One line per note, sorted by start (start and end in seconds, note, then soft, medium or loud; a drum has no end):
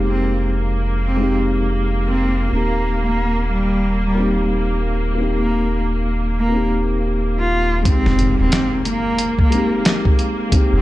0.00 2.50 F1 medium
0.00 1.15 G#3 medium
0.00 7.85 A#3 medium
0.00 1.18 C4 medium
0.00 1.20 D#4 medium
0.00 1.23 G4 medium
0.06 0.48 C4 medium
1.05 1.35 C4 medium
1.15 2.47 G#3 medium
1.15 2.48 C4 medium
1.20 2.50 D#4 medium
1.20 2.51 G4 loud
2.06 2.48 C4 medium
2.49 7.83 D#1 medium
2.49 4.13 A#3 medium
2.49 2.99 A#3 medium
2.49 4.15 C4 medium
2.54 4.16 D#4 medium
2.54 4.18 G4 medium
3.06 3.48 A#3 medium
3.53 4.00 G3 medium
4.06 4.48 G3 medium
4.15 5.14 A#3 medium
4.15 5.15 C4 medium
4.20 5.16 D#4 medium
4.20 5.17 G4 loud
5.15 6.47 A#3 medium
5.15 6.48 C4 medium
5.20 6.50 D#4 medium
5.20 6.51 G4 medium
5.40 5.82 A#3 medium
6.39 6.68 A#3 medium
6.49 7.81 A#3 medium
6.49 7.82 C4 medium
6.54 7.83 D#4 medium
6.54 7.84 G4 loud
7.40 7.82 F4 medium
7.81 9.47 G#3 medium
7.81 9.48 C4 medium
7.81 kick loud
7.81 closed hi-hat medium
7.81 impact medium
7.86 10.82 A#3 medium
7.86 8.33 C4 loud
7.86 9.49 D#4 medium
7.86 9.51 G4 medium
8.06 8.34 F1 loud
8.06 snare soft
8.19 closed hi-hat medium
8.39 8.51 D#1 loud
8.39 8.82 C4 medium
8.52 snare loud
8.52 closed hi-hat medium
8.85 9.34 A#3 loud
8.85 closed hi-hat medium
9.18 closed hi-hat medium
9.39 9.82 A#3 loud
9.39 kick medium
9.49 10.47 G#3 loud
9.49 10.49 C4 medium
9.49 closed hi-hat medium
9.54 10.50 D#4 medium
9.54 10.51 G4 loud
9.85 snare loud
9.85 closed hi-hat medium
10.05 kick medium
10.19 closed hi-hat medium
10.49 10.82 G#3 medium
10.49 10.82 C4 medium
10.49 kick loud
10.49 closed hi-hat medium
10.54 10.82 D#4 medium
10.54 10.82 G4 loud
10.73 10.82 F1 loud
10.73 10.82 C4 medium